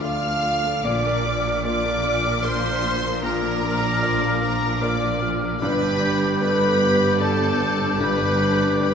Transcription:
0.00 0.80 D2 medium
0.00 0.81 D2 medium
0.00 0.81 D3 medium
0.00 0.81 F3 medium
0.00 0.04 A3 medium
0.00 0.23 A3 medium
0.00 0.81 D4 medium
0.00 0.04 F4 medium
0.00 0.23 F4 medium
0.00 0.05 D5 medium
0.00 0.86 F5 loud
0.00 0.84 F5 loud
0.00 0.85 F6 loud
0.04 0.81 A3 medium
0.04 0.81 F4 medium
0.04 0.83 D5 medium
0.04 0.81 D5 medium
0.24 0.44 D4 medium
0.24 0.44 A4 medium
0.44 0.64 A3 medium
0.44 0.64 F4 medium
0.64 0.85 D4 medium
0.64 0.84 A4 medium
0.84 3.19 A#1 medium
0.84 5.58 A#1 medium
0.84 5.57 A#2 medium
0.84 3.19 A#2 medium
0.84 5.45 F3 medium
0.84 1.03 A#3 medium
0.84 5.45 D4 medium
0.84 1.03 F4 medium
0.84 1.63 D5 loud
0.84 1.63 D5 medium
0.84 1.63 D6 loud
0.84 1.63 F6 medium
1.04 1.24 D4 medium
1.04 1.24 A#4 medium
1.25 1.45 A#3 medium
1.25 1.45 F4 medium
1.44 1.64 D4 medium
1.44 1.64 A#4 medium
1.64 1.83 A#3 medium
1.64 2.40 A#3 medium
1.64 1.83 F4 medium
1.64 2.41 F4 medium
1.64 2.15 D5 loud
1.64 2.43 D5 medium
1.64 2.94 D5 medium
1.64 2.41 D5 medium
1.64 2.43 D6 loud
1.64 2.92 F6 medium
1.84 2.04 D4 medium
1.84 2.04 A#4 medium
2.03 2.24 A#3 medium
2.03 2.24 F4 medium
2.24 2.44 D4 medium
2.24 2.44 A#4 medium
2.43 2.62 A#3 medium
2.43 3.19 A#3 medium
2.43 2.62 F4 medium
2.43 3.19 F4 medium
2.43 3.23 C5 loud
2.43 3.24 C5 loud
2.43 3.20 D5 medium
2.43 3.23 C6 loud
2.63 2.83 D4 medium
2.63 2.83 A#4 medium
2.84 3.03 A#3 medium
2.84 3.03 F4 medium
3.03 3.23 D4 medium
3.03 3.23 A#4 medium
3.23 5.57 A#1 medium
3.23 5.57 A#2 medium
3.23 3.41 A#3 medium
3.23 3.42 F4 medium
3.23 4.42 A#4 loud
3.23 4.40 A#4 loud
3.23 4.78 D5 loud
3.23 4.39 A#5 loud
3.23 4.79 F6 medium
3.43 3.63 D4 medium
3.43 3.63 A#4 medium
3.63 3.82 A#3 medium
3.63 3.83 F4 medium
3.82 4.02 D4 medium
3.82 4.02 A#4 medium
4.02 4.78 A#3 medium
4.02 4.21 A#3 medium
4.02 4.78 F4 medium
4.02 4.21 F4 medium
4.02 4.78 D5 medium
4.22 4.42 D4 medium
4.22 4.42 A#4 medium
4.41 4.62 A#3 medium
4.41 4.62 F4 medium
4.41 4.81 A#4 medium
4.41 4.84 A#4 loud
4.41 4.81 A#5 loud
4.63 4.82 D4 medium
4.63 4.82 A#4 medium
4.82 5.01 A#3 medium
4.82 5.58 A#3 medium
4.82 5.01 F4 medium
4.82 5.58 F4 medium
4.82 5.60 D5 medium
4.82 5.22 D5 loud
4.82 5.58 D5 medium
4.82 5.22 D6 loud
4.82 5.60 F6 medium
5.02 5.22 D4 medium
5.02 5.22 A#4 medium
5.22 5.42 A#3 medium
5.22 5.42 F4 medium
5.41 5.61 D4 medium
5.41 5.61 A#4 medium
5.61 8.94 G1 medium
5.61 7.97 G1 medium
5.61 8.94 G2 medium
5.61 7.97 G2 medium
5.61 8.94 G3 medium
5.61 8.94 D4 medium
5.61 6.37 D4 medium
5.61 6.37 G4 medium
5.61 6.37 B4 loud
5.61 8.94 D5 medium
5.61 6.37 B5 loud
5.61 8.94 G6 medium
6.40 7.99 B3 medium
6.40 7.17 B3 medium
6.40 7.17 G4 medium
6.40 6.81 A4 medium
6.40 7.22 B4 loud
6.40 7.19 B4 medium
6.40 7.17 D5 medium
6.40 7.19 B5 loud
6.81 7.19 G4 medium
7.20 7.96 B3 medium
7.20 7.59 G4 medium
7.20 7.96 G4 medium
7.20 8.00 A4 loud
7.20 7.97 D5 medium
7.20 7.99 A5 loud
7.60 8.80 A4 medium
8.00 8.94 G1 medium
8.00 8.94 G2 medium
8.00 8.40 B3 medium
8.00 8.79 B4 loud
8.00 8.78 B4 loud
8.00 8.80 B5 loud
8.41 8.81 D4 medium
8.79 8.94 G3 medium
8.79 8.94 B3 medium
8.79 8.94 G4 medium
8.79 8.94 B4 loud
8.79 8.94 D5 medium
8.79 8.94 B5 loud

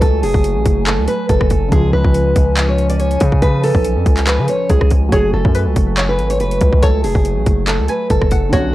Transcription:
0.00 0.25 C#2 loud
0.00 1.66 F#3 medium
0.00 1.69 F#3 medium
0.00 1.68 A3 medium
0.00 1.69 A3 medium
0.00 1.70 F#4 medium
0.00 0.21 A4 loud
0.00 1.69 G#5 medium
0.00 kick loud
0.00 closed hi-hat medium
0.23 0.34 F1 loud
0.23 0.83 G#4 medium
0.23 open hi-hat medium
0.34 0.57 F#1 loud
0.34 kick loud
0.44 closed hi-hat medium
0.56 0.65 A1 loud
0.66 1.00 F#1 loud
0.66 kick loud
0.66 closed hi-hat medium
0.87 1.06 A4 medium
0.87 clap loud
0.87 closed hi-hat medium
0.98 1.08 C#2 loud
1.08 1.28 B4 medium
1.08 closed hi-hat medium
1.29 1.70 F#1 loud
1.29 1.69 A4 medium
1.29 kick medium
1.29 closed hi-hat medium
1.41 kick loud
1.41 cross-stick loud
1.50 kick medium
1.50 closed hi-hat medium
1.68 1.92 C#2 loud
1.68 5.07 C#3 medium
1.68 5.08 F3 medium
1.68 5.09 F3 medium
1.68 5.09 C#4 medium
1.68 1.92 G#4 loud
1.68 8.49 G#5 medium
1.68 kick loud
1.68 closed hi-hat medium
1.76 5.10 F4 medium
1.93 2.04 C#2 loud
1.93 2.64 B4 medium
2.04 2.35 C#2 loud
2.04 kick medium
2.14 closed hi-hat medium
2.36 3.18 C#2 loud
2.36 kick loud
2.36 closed hi-hat medium
2.57 clap loud
2.57 closed hi-hat medium
2.68 2.88 C#5 medium
2.78 closed hi-hat soft
2.89 2.99 D5 medium
2.89 closed hi-hat medium
3.00 3.40 C#5 medium
3.00 closed hi-hat medium
3.11 closed hi-hat medium
3.20 3.73 C#3 loud
3.20 kick medium
3.20 closed hi-hat medium
3.32 kick medium
3.42 3.62 B4 loud
3.42 kick loud
3.42 closed hi-hat medium
3.64 4.24 A4 medium
3.64 open hi-hat medium
3.75 3.98 B1 loud
3.75 kick loud
3.85 closed hi-hat medium
3.96 4.06 F2 loud
4.06 4.40 C#2 loud
4.06 kick loud
4.06 closed hi-hat medium
4.17 clap medium
4.17 closed hi-hat medium
4.27 4.47 B4 medium
4.27 clap loud
4.27 closed hi-hat medium
4.39 4.48 C#3 loud
4.48 4.69 C#5 medium
4.48 closed hi-hat medium
4.70 5.11 C#2 loud
4.70 4.90 G#4 medium
4.70 kick medium
4.70 closed hi-hat medium
4.81 kick medium
4.81 cross-stick loud
4.91 kick medium
4.91 closed hi-hat medium
5.09 5.33 F#1 loud
5.09 8.47 F#3 medium
5.09 8.49 F#3 medium
5.09 8.49 A3 medium
5.09 5.52 C#5 loud
5.09 kick loud
5.09 closed hi-hat medium
5.13 8.51 F#4 medium
5.13 5.32 G#4 loud
5.33 5.44 F#1 loud
5.33 6.05 A4 medium
5.45 5.68 F#2 loud
5.45 kick loud
5.55 5.95 B4 medium
5.55 closed hi-hat medium
5.66 5.76 C#2 medium
5.76 6.20 F#1 loud
5.76 kick loud
5.76 closed hi-hat medium
5.97 6.79 C#5 medium
5.97 clap loud
5.97 closed hi-hat medium
6.09 6.29 B4 medium
6.19 6.42 G#1 loud
6.19 closed hi-hat soft
6.30 6.39 C#5 medium
6.30 closed hi-hat medium
6.40 6.60 F#1 loud
6.40 6.80 B4 medium
6.40 closed hi-hat medium
6.51 closed hi-hat medium
6.61 7.05 C#2 loud
6.61 kick medium
6.61 closed hi-hat medium
6.73 kick medium
6.83 7.02 A4 loud
6.83 7.23 C#5 loud
6.83 kick loud
6.83 closed hi-hat medium
7.04 7.15 F1 loud
7.04 7.64 G#4 medium
7.04 open hi-hat medium
7.15 7.38 F#1 loud
7.15 kick loud
7.25 closed hi-hat medium
7.36 7.46 A1 medium
7.46 7.81 F#1 loud
7.46 kick loud
7.46 closed hi-hat medium
7.67 7.87 A4 medium
7.67 clap loud
7.67 closed hi-hat medium
7.79 7.88 C#2 loud
7.88 8.09 B4 medium
7.88 8.29 G#5 medium
7.88 closed hi-hat medium
8.10 8.51 F#1 loud
8.10 8.50 A4 medium
8.10 kick medium
8.10 closed hi-hat medium
8.22 kick loud
8.22 cross-stick loud
8.31 8.52 F#5 medium
8.31 kick medium
8.31 closed hi-hat medium
8.49 8.73 B1 loud
8.49 8.75 D3 medium
8.49 8.75 B3 medium
8.49 8.75 C#4 medium
8.49 8.72 F#4 loud
8.49 8.75 C#5 loud
8.49 kick loud
8.49 closed hi-hat medium
8.57 8.75 C#4 medium

